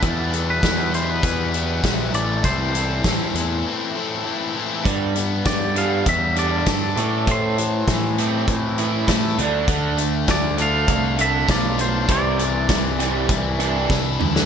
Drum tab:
HH |x-x-x-x-x-x-x-x-|x-x-x-x---------|x-x-x-x-x-x-x-x-|x-x-x-x-x-x-x-x-|
SD |----o-------o---|----o-----------|----o-------o---|----o-------o---|
T2 |----------------|----------------|----------------|----------------|
BD |o---o---o---o---|o---o-----------|o---o---o---o---|o---o---o---o---|

HH |x-x-x-x-x-x-x-x-|x-x-x-x-x-x-----|
SD |----o-------o---|----o-------o--o|
T2 |----------------|--------------o-|
BD |o---o---o---o---|o---o---o---o---|